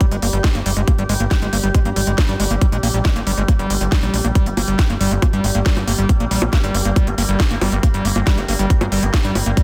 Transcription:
Already playing: synth drone G3 G4, ambient pad G4 D5 G5
0.01 acid bass G3, kick, closed hi-hat
0.11 analog synth bass G1, acid bass G#3, closed hi-hat
0.22 analog synth bass G1, acid bass A#3, open hi-hat
0.33 analog synth bass G1, acid bass G3, closed hi-hat
0.44 acid bass G#3, kick, snare, closed hi-hat
0.55 analog synth bass G1, acid bass A#3, closed hi-hat
0.66 analog synth bass G1, acid bass G3, open hi-hat
0.77 analog synth bass G1, acid bass G#3, closed hi-hat
0.88 acid bass A#3, kick, closed hi-hat
0.98 analog synth bass G1, acid bass G3, closed hi-hat
1.09 analog synth bass G1, acid bass G#3, open hi-hat
1.20 analog synth bass G1, acid bass A#3, closed hi-hat
1.31 acid bass G3, kick, snare, closed hi-hat
1.42 analog synth bass G1, acid bass G#3, closed hi-hat
1.53 analog synth bass G1, acid bass A#3, open hi-hat
1.64 analog synth bass G1, acid bass G3, closed hi-hat
1.75 acid bass G#3, kick, closed hi-hat
1.85 analog synth bass G2, acid bass A#3, closed hi-hat
1.96 analog synth bass G1, acid bass G3, open hi-hat
2.07 analog synth bass G1, acid bass G#3, closed hi-hat
2.18 acid bass A#3, kick, snare, closed hi-hat
2.29 analog synth bass G2, acid bass G3, closed hi-hat
2.40 analog synth bass G1, acid bass G#3, open hi-hat
2.51 analog synth bass G1, acid bass A#3, closed hi-hat
2.61 acid bass G3, kick, closed hi-hat
2.72 analog synth bass A#1, acid bass G#3, closed hi-hat
2.83 analog synth bass A#1, acid bass A#3, open hi-hat
2.94 analog synth bass A#1, acid bass G3, closed hi-hat
3.05 acid bass G#3, kick, snare, closed hi-hat
3.16 analog synth bass G1, acid bass A#3, closed hi-hat
3.27 analog synth bass G1, acid bass G3, open hi-hat
3.38 analog synth bass G1, acid bass G#3, closed hi-hat
3.48 acid bass A#3, kick, closed hi-hat
3.59 analog synth bass G1, acid bass G3, closed hi-hat
3.70 analog synth bass G1, acid bass G#3, open hi-hat
3.81 analog synth bass G1, acid bass G3, closed hi-hat
3.92 acid bass G3, kick, snare, closed hi-hat
4.03 analog synth bass A#1, acid bass G3, closed hi-hat
4.14 analog synth bass A#1, acid bass G#3, open hi-hat
4.25 analog synth bass A#1, acid bass A#3, closed hi-hat
4.35 acid bass G3, synth drone A#3, kick, closed hi-hat
4.46 analog synth bass G1, acid bass D4, closed hi-hat
4.57 analog synth bass G1, acid bass A#3, open hi-hat, high bongo
4.68 analog synth bass G1, acid bass G3, closed hi-hat
4.79 acid bass D4, kick, snare, closed hi-hat
4.90 analog synth bass G1, acid bass A#3, closed hi-hat
5.01 analog synth bass G1, acid bass G3, open hi-hat
5.11 analog synth bass G1, acid bass D4, closed hi-hat
5.22 acid bass A#3, kick, closed hi-hat, high bongo
5.33 analog synth bass G2, acid bass G3, closed hi-hat
5.44 analog synth bass G1, acid bass D4, open hi-hat
5.55 analog synth bass G1, acid bass A#3, closed hi-hat
5.66 acid bass G3, kick, snare, closed hi-hat
5.77 analog synth bass G2, acid bass D4, closed hi-hat, high bongo
5.88 analog synth bass G1, acid bass A#3, open hi-hat
5.98 analog synth bass G1, acid bass G3, closed hi-hat
6.09 acid bass D4, kick, closed hi-hat
6.20 analog synth bass A#1, acid bass A#3, closed hi-hat
6.31 analog synth bass A#1, acid bass G3, open hi-hat
6.42 analog synth bass A#1, acid bass D4, closed hi-hat, high bongo
6.53 acid bass A#3, kick, snare, closed hi-hat
6.64 analog synth bass G1, acid bass G3, closed hi-hat
6.75 analog synth bass G1, acid bass D4, open hi-hat
6.85 analog synth bass G1, acid bass A#3, closed hi-hat
6.96 acid bass G3, kick, closed hi-hat, high bongo
7.07 analog synth bass G1, acid bass D4, closed hi-hat
7.18 analog synth bass G1, acid bass A#3, open hi-hat
7.29 analog synth bass G1, acid bass G3, closed hi-hat
7.40 acid bass D4, kick, snare, closed hi-hat
7.51 analog synth bass G1, acid bass A#3, closed hi-hat
7.61 analog synth bass G1, acid bass G3, open hi-hat, high bongo
7.72 analog synth bass G1, acid bass D4, closed hi-hat
7.83 acid bass A#3, kick, closed hi-hat
7.94 analog synth bass G1, acid bass G3, closed hi-hat
8.05 analog synth bass G1, acid bass D4, open hi-hat
8.16 analog synth bass G1, acid bass A#3, closed hi-hat, high bongo
8.27 acid bass G3, kick, snare, closed hi-hat
8.38 analog synth bass G1, acid bass D4, closed hi-hat
8.48 analog synth bass G1, acid bass A#3, open hi-hat
8.59 analog synth bass G1, acid bass G3, closed hi-hat
8.70 acid bass D4, kick, closed hi-hat
8.81 analog synth bass G2, acid bass A#3, closed hi-hat, high bongo
8.92 analog synth bass G1, acid bass G3, open hi-hat
9.03 analog synth bass G1, acid bass D4, closed hi-hat
9.14 acid bass A#3, kick, snare, closed hi-hat
9.24 analog synth bass G2, acid bass G3, closed hi-hat
9.35 analog synth bass G1, acid bass D4, open hi-hat, high bongo
9.46 analog synth bass G1, acid bass A#3, closed hi-hat
9.57 acid bass G3, kick, closed hi-hat

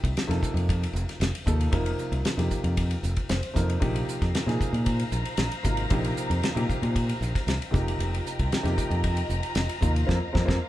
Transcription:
Already playing: grand piano C3 F3 A#3 D#4 G4
0.03 fingered electric bass C2, kick, ride
0.17 snare, ride
0.28 fingered electric bass F2, grand piano C3 F3 A#3 D#4 A4, snare, ride
0.43 kick, hi-hat pedal
0.54 fingered electric bass F2, ride
0.69 kick, ride
0.83 ride
0.93 fingered electric bass F1, hi-hat pedal
1.09 snare, ride
1.20 fingered electric bass F1, snare, ride
1.35 ride
1.46 fingered electric bass D#2, grand piano C3 F3 A#3 D#4 A4, kick, hi-hat pedal
1.61 ride
1.72 fingered electric bass F1, grand piano C3 F3 A#3 D#4 A#4, kick, ride
1.86 ride
1.99 hi-hat pedal
2.12 fingered electric bass C2, ride
2.25 snare, ride
2.37 fingered electric bass F2, grand piano C3 F3 A#3 D#4 G4, snare, ride
2.51 kick, hi-hat pedal
2.64 fingered electric bass F2, ride
2.77 kick, ride
2.91 ride
3.03 fingered electric bass F1, hi-hat pedal
3.16 kick, ride
3.29 fingered electric bass F1, grand piano C5, snare, ride
3.43 ride
3.54 fingered electric bass F2, grand piano C3 F3 A#3 D#4 A#4, kick, snare, hi-hat pedal
3.70 ride
3.80 fingered electric bass A#1, grand piano C3 F3 A#3 D#4 G4, string section D#4 C5 F5 A#5, kick, ride
3.96 ride
4.09 hi-hat pedal
4.22 fingered electric bass F2, kick, snare, ride
4.35 snare, ride
4.46 fingered electric bass A#2, grand piano C3 F3 A#3 D#4 G#4, snare, ride
4.61 kick, hi-hat pedal
4.73 fingered electric bass A#2, ride
4.86 kick, ride
4.99 ride
5.12 fingered electric bass A#1, hi-hat pedal
5.25 ride
5.37 fingered electric bass A#1, snare, ride
5.52 ride
5.63 fingered electric bass G#1, grand piano C3 F3 A#3 D#4 F4, kick, hi-hat pedal
5.77 ride
5.90 fingered electric bass A#1, grand piano C3 F3 A#3 D#4 G4, kick, ride
6.04 ride
6.17 hi-hat pedal
6.30 fingered electric bass F2, ride
6.43 snare, ride
6.55 fingered electric bass A#2, grand piano C3 F3 A#3 D#4 G4, ride
6.70 kick, hi-hat pedal
6.82 fingered electric bass A#2, ride
6.96 kick, ride
7.09 ride
7.21 fingered electric bass A#1, hi-hat pedal
7.35 kick, snare, ride
7.47 fingered electric bass C2, snare, ride
7.62 ride
7.71 fingered electric bass F1, grand piano C3 F3 A#3 D#4 G4, string section F4 D#5 G5 A#5, kick, hi-hat pedal
7.76 snare
7.88 ride
7.99 fingered electric bass F1, ride
8.14 ride
8.26 hi-hat pedal
8.39 fingered electric bass C2, kick, ride
8.52 snare, ride
8.63 fingered electric bass F2, grand piano C3 F3 A#3 D#4 G4, snare, ride
8.78 kick, hi-hat pedal
8.90 fingered electric bass F2, ride
9.04 kick, ride
9.17 ride
9.29 fingered electric bass F1, hi-hat pedal
9.43 ride
9.55 fingered electric bass F1, snare, ride
9.69 ride
9.81 fingered electric bass D#2, grand piano C3 F3 A#3 D#4 F4, string section F5, kick, hi-hat pedal
9.96 ride
10.07 fingered electric bass F2, grand piano F3 A#3 C4, kick, snare
10.33 fingered electric bass F2, grand piano F3 A#3 C4, kick, snare
10.45 fingered electric bass F2, grand piano F3 A#3 C4, kick
10.49 snare

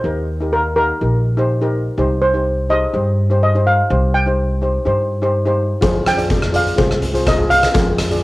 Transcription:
Already playing: steel pan C5
0.04 upright bass D#2, steel pan D#4 G4 A#4
0.41 steel pan D#4 G4 A#4
0.53 steel pan A#4
0.76 steel pan D#4 G4 A#4
1.01 upright bass A#1, steel pan D#4 G4 A#4
1.37 steel pan D#4 G4 C5
1.61 steel pan D#4 G4 A#4
1.98 upright bass C2, steel pan D#4 G4 C5
2.22 steel pan C5
2.34 steel pan D#4 G4 C5
2.69 steel pan D#4 G4 C5 D#5
2.93 upright bass G2, steel pan D#4 G4 C5
3.30 steel pan D#4 G4 C5
3.43 steel pan D#5
3.55 steel pan D#4 G4 C5
3.67 steel pan F5
3.90 upright bass C2, steel pan D#4 G4 C5
4.14 steel pan G5
4.26 steel pan D#4 G4 C5
4.62 steel pan D#4 G4 C5
4.85 upright bass G2, steel pan D#4 G4 C5
5.22 steel pan D#4 G4 C5
5.45 steel pan D#4 G4 C5
5.81 upright bass F2, steel pan F4 G#4 C5, kick, closed hi-hat, cowbell
6.06 steel pan G5, cross-stick, closed hi-hat
6.17 steel pan F4 G#4 D5, closed hi-hat
6.30 kick, closed hi-hat, cowbell
6.42 cross-stick
6.53 steel pan F4 G#4 D5 F5, closed hi-hat
6.67 closed hi-hat
6.76 upright bass C2, steel pan F4 G#4 C5, kick, closed hi-hat, cowbell
6.91 cross-stick
7.02 closed hi-hat
7.13 steel pan F4 G#4 C5, closed hi-hat
7.26 steel pan D#5, kick, cross-stick, closed hi-hat, cowbell
7.37 steel pan F4 G#4 D#5
7.50 steel pan F5, closed hi-hat
7.63 cross-stick, closed hi-hat
7.74 upright bass F2, steel pan F4 G#4 A#4, kick, closed hi-hat, cowbell
7.98 cross-stick, closed hi-hat
8.11 steel pan F4 G#4 D5, closed hi-hat

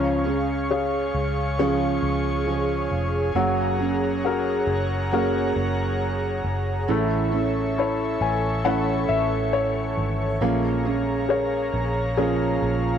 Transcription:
Already playing: fingered electric bass C#2, nylon-string guitar C#3 F3 G#3 C#4 G#4, grand piano C#4, analog synth pad G#4 C#5 F5 C#6
0.26 nylon-string guitar G#3 C#4 G#4
0.71 grand piano G#4 C#5 F5
1.14 fingered electric bass C#2
1.58 nylon-string guitar C#3 F3 G#3 C#4 G#4, grand piano G#4 C#5 F5
2.02 fingered electric bass C#2
2.46 nylon-string guitar F3 G#3 C#4 G#4
2.91 fingered electric bass F1
3.35 fingered electric bass F#1, nylon-string guitar F#3 A#3 C#4 G#4, grand piano F#3, analog synth pad C#5 F#5 A#5
3.79 nylon-string guitar A#3 C#4 G#4
4.25 grand piano F#4 G#4 A#4
4.67 fingered electric bass F#1
5.11 nylon-string guitar F#3 A#3 C#4 G#4, grand piano F#4 G#4 A#4
5.56 fingered electric bass F#1
6.44 fingered electric bass F#1
6.88 fingered electric bass A1, nylon-string guitar A2 E3 A3 C#4 E4 A4, grand piano A3, analog synth pad A4 C#5 E5 C#6
7.32 nylon-string guitar A3 C#4 E4 A4
7.78 grand piano E4 A4 C#5
8.21 fingered electric bass A1, grand piano G#5
8.64 nylon-string guitar E3 A3 C#4 E4 A4, grand piano E4 A4 C#5 F#5
9.09 fingered electric bass A1, grand piano E5
9.53 grand piano C#5
9.97 fingered electric bass G#1
10.40 fingered electric bass A#1, nylon-string guitar A#2 F3 G#3 C#4 G#4, grand piano A#3, analog synth pad G#4 F5 A#5
10.85 nylon-string guitar G#3 C#4 G#4
11.29 grand piano G#4 A#4 C#5
11.73 fingered electric bass A#1
12.17 nylon-string guitar A#2 F3 G#3 C#4 G#4, grand piano G#4 A#4 C#5
12.62 fingered electric bass A#1

